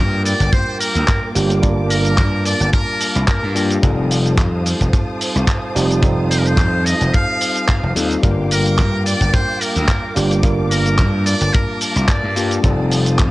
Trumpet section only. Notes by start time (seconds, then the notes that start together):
Already playing: A#4
0.25 D5
0.53 C5
0.80 A#4
1.90 A#4
2.46 D5
2.73 A#4
3.29 A#4
6.31 C5
6.38 A#4
6.46 C5
6.86 D#5
7.14 F5
8.52 A#4
9.06 D5
9.34 C5
9.61 A#4
10.71 A#4
11.26 D5
11.54 A#4
12.09 D5